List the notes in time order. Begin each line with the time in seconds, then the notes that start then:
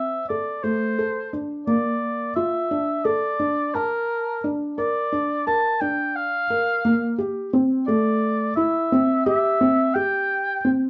Already playing: C4 E5
0.29 A4 D5
0.63 A3 C5
0.99 A4
1.33 D4
1.66 A#3 D5
2.36 F4 E5
2.71 D4
3.05 A4 D5
3.40 D4
3.75 A#4 A5
4.44 D4
4.78 A#4 D5
5.12 D4
5.47 A#4 A5
5.80 D4 G5
6.16 F5
6.50 A#4
6.85 A#3
7.18 G4
7.53 C4
7.87 A3 D5
8.56 E4 E5
8.92 C4
9.26 G4 E5
9.61 C4
9.94 G4 G5
10.65 C4